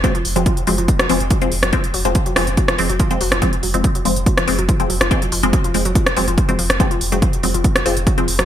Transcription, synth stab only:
X:1
M:4/4
L:1/16
Q:1/4=142
K:Fphr
V:1 name="Synth stab" clef=bass
[F,A,C] z2 [F,A,C]2 z [F,A,C] z3 [F,A,C] z2 [F,A,C] z2 | [F,A,C] z2 [F,A,C]2 z [F,A,C] z3 [F,A,C] z2 [F,A,C] z2 | [F,A,C] z2 [F,A,C]2 z [F,A,C] z3 [F,A,C] z2 [F,A,C] z2 | [F,A,C] z2 [F,A,C]2 z [F,A,C] z3 [F,A,C] z2 [F,A,C] z2 |
[F,A,C] z2 [F,A,C]2 z [F,A,C] z3 [F,A,C] z2 [F,A,C] z2 |]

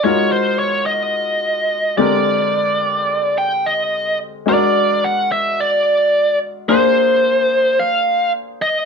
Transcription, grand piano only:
X:1
M:4/4
L:1/8
Q:1/4=108
K:Bbmix
V:1 name="Grand piano"
[A,EF_GB]6- [A,EFGB] [D,A,C=GB]- | [D,A,CGB]6- [D,A,CGB] z | [A,_D=D^FB]8 | [B,DAc]8 |]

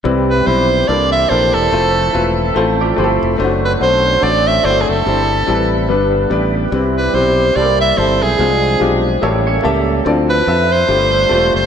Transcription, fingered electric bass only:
X:1
M:4/4
L:1/8
Q:"Swing" 1/4=144
K:C
V:1 name="Fingered electric bass" clef=bass
C,,2 B,,,2 C,,2 _B,,, E,,, | F,,,2 E,,,2 A,,,2 G,,, F,,, | ^F,,,2 B,,,2 A,,,2 G,,, F,,, | G,,,2 A,,,2 G,,,2 A,,,2 |
C,,2 B,,,2 C,,2 G,,, B,,, | C,,2 B,,,2 A,,,2 ^C,,2 | D,,2 F,,2 G,,,2 E,,, ^F,,, |]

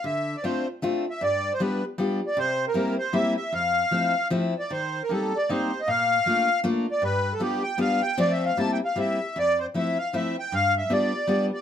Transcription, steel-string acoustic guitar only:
X:1
M:3/4
L:1/8
Q:"Swing" 1/4=155
K:F
V:1 name="Steel-string acoustic guitar"
D,2 [A,CDF] z [A,CDF] z | G,,2 [G,=B,DF] z [G,B,DF] z | C,2 [G,B,CE] z [G,B,CE] z | F,,2 [F,A,CE] z [F,A,CE] z |
_E,2 [G,B,C_E] z [G,B,CE] z | B,,2 [A,B,DF] z [A,B,DF] z | G,,2 [G,=B,DF] z [G,B,DF] z | [F,A,CF]2 [G,B,CE] z [G,B,CE] z |
F,,2 [F,A,CE] z [F,A,CE] z | G,,2 [G,=B,DF] z [G,B,DF] z |]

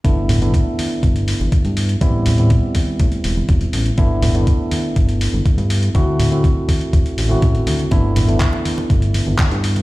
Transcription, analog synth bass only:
X:1
M:4/4
L:1/16
Q:1/4=122
K:G
V:1 name="Analog synth bass" clef=bass
G,,,4- G,,, z3 G,,,3 G,,, z G,,3 | A,,,4- A,,, z3 A,, E,,, E,,, z E,,, z A,,, z | G,,,4- G,,, z3 G,,,3 G,,, z G,,3 | D,,4- D,, z3 D,,, A,,, A,,, z A,,, z D,, z |
G,,,4- G,,, z3 G,,,3 G,,, z G,,3 |]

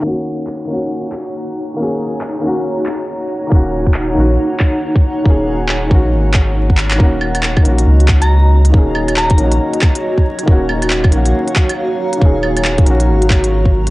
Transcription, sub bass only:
X:1
M:4/4
L:1/8
Q:"Swing 16ths" 1/4=138
K:Ebm
V:1 name="Sub bass" clef=bass
z8 | z8 | E,,,3 B,,, z4 | E,,,3 B,,, A,,,4 |
E,,,3 B,,, D,,4 | E,,,3 B,,, z4 | E,,,3 B,,, z4 | E,,,3 B,,, A,,,4 |]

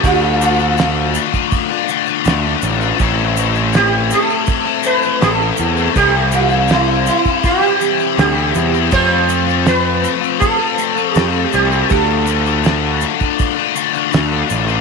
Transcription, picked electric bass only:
X:1
M:4/4
L:1/8
Q:1/4=81
K:Dm
V:1 name="Picked electric bass" clef=bass
D,,4 z2 D,, A,,, | A,,,4 z2 A,,, E,, | C,,4 z2 D,, E,, | F,,4 z2 F,, C,, |
D,,4 z2 D,, A,,, |]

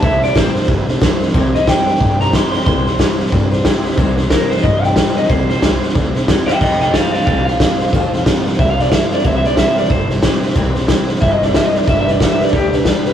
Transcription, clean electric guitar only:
X:1
M:4/4
L:1/8
Q:"Swing" 1/4=182
K:C
V:1 name="Clean electric guitar"
e d c2 z4 | z _e g3 _b c' c' | c'4 z4 | z2 _B c _e g2 e |
c c2 z4 [eg] | [_eg] [eg] [Af] [Af] [Af] f3- | f3 z (3e f d (3e f d | (3e e d (3e e d c z3 |
z4 (3e _e d (3=e _e d | (3e e d (3e e d G z3 |]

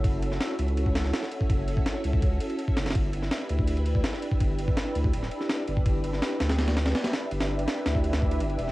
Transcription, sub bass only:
X:1
M:4/4
L:1/8
Q:1/4=165
K:Glyd
V:1 name="Sub bass" clef=bass
F,,,2 z C,,3 z2 | F,,,2 z C,, C,, z2 F,,, | G,,,2 z D,,3 z2 | G,,,2 z D,, D,,, z2 G,,, |
G,,,2 z D,,3 z2 | G,,,2 z D,,3 G,,, E,,, |]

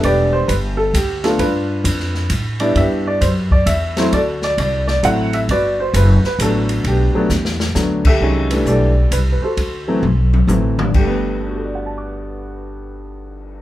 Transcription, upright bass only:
X:1
M:3/4
L:1/8
Q:"Swing" 1/4=132
K:G
V:1 name="Upright bass" clef=bass
E,,,2 G,,,2 D,,2 | G,,2 =F,,2 A,,2 | G,,2 F,,2 E,,2 | D,,2 C,,2 A,,,2 |
G,,,2 F,,, z A,,,2 | B,,, z E,,2 D,,2 | C,,2 B,,,2 C,, z | D,,2 B,,,2 A,,,2 |
G,,,6- | G,,,6 |]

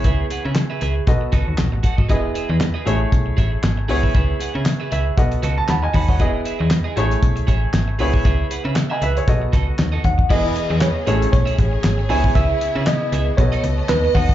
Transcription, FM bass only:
X:1
M:4/4
L:1/16
Q:"Swing 16ths" 1/4=117
K:E
V:1 name="FM bass" clef=bass
C,,2 z C,2 z C,,2 B,,, z C,, D,, B,,, A,,, z G,,, | E,,,2 z E,,2 z A,,,2 B,,,2 A,,,2 G,,,2 C,,2 | C,,2 z C,2 z C,,2 B,,,2 C,,2 D,,2 D,,2 | E,,,2 z E,,2 z A,,,2 B,,,2 A,,,2 G,,,2 C,,2 |
C,,2 z C,2 z C,,2 B,,,2 C,,2 D,,2 D,,2 | E,,,2 z E,,2 z A,,,2 B,,,2 A,,,2 G,,,2 C,,2 | C,,2 z C,2 z C,,2 B,,,2 C,,2 D,,2 D,,2 |]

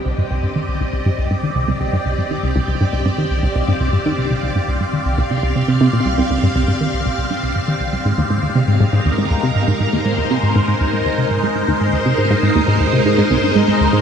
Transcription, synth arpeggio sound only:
X:1
M:4/4
L:1/16
Q:1/4=120
K:Cm
V:1 name="Synth arpeggio sound" clef=bass
C,, G,, C,, G,, E, C,, C,, C,, G,, C,, G,, E, C,, C,, C,, G,, | C,, G,, E, C,, C,, C,, G,, C,, G,, E, C,, C,, C,, G,, C,, G,, | E, C,, C,, C,, G,, C,, G,, E, C,, C,, C, C,, C, C, C, B,, | C,, C,, C,, G,, C,, G,, E, C,, C,, C,, G,, C,, G,, E, C,, C,, |
A,, E,, A,, E,, C, A,, A,, A,, E,, A,, E,, C, A,, A,, A,, E,, | A,, E,, C, A,, A,, A,, E,, A,, E,, C, A,, A,, A,, E,, A,, E,, | C, A,, A,, A,, E,, A,, E,, C, A,, A,, C,, G,, A,, A,, D,, A,, |]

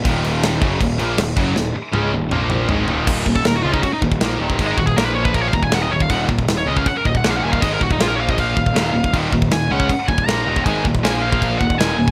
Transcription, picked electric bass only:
X:1
M:4/4
L:1/8
Q:1/4=158
K:Ebm
V:1 name="Picked electric bass" clef=bass
E,,,3 G,,, E,,, B,,, E,,, G,,, | E,,, z D,, E,,, B,,,2 A,,, E,,, | E,,, E,,, E,,, D,, z E,,, B,,, E,,, | A,,, E,,, B,,,3 E,,, E,,, E,,, |
E,,, E,,, E,,, D,, z E,,, B,,, E,,, | A,,, E,,, B,,,3 E,,, E,,, E,,, | E,,, E,,, E,,, D,, z E,,, B,,, E,,, | A,,, E,,, B,,,3 E,,, E,,, E,,, |]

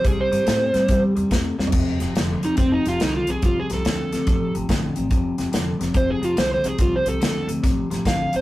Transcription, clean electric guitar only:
X:1
M:4/4
L:1/8
Q:"Swing" 1/4=142
K:Fmix
V:1 name="Clean electric guitar" clef=bass
[C,G,] [C,G,] [C,A,] [C,G,] [C,G,] [C,G,] [C,A,] [C,G,] | [F,,C,] [F,,C,] [F,,D,] [F,,C,] [F,,C,] [F,,C,] [F,,D,] [F,,C,] | [F,,C,] [F,,C,] [F,,D,] [F,,C,] [F,,C,] [F,,C,] [F,,D,] [F,,C,] | [F,,C,] [F,,C,] [F,,D,] [F,,C,] [F,,C,] [F,,C,] [F,,D,] [F,,C,] |
[F,,C,] [F,,C,] [F,,D,] [F,,C,] [F,,C,] [F,,C,] [F,,D,] [F,,C,] |]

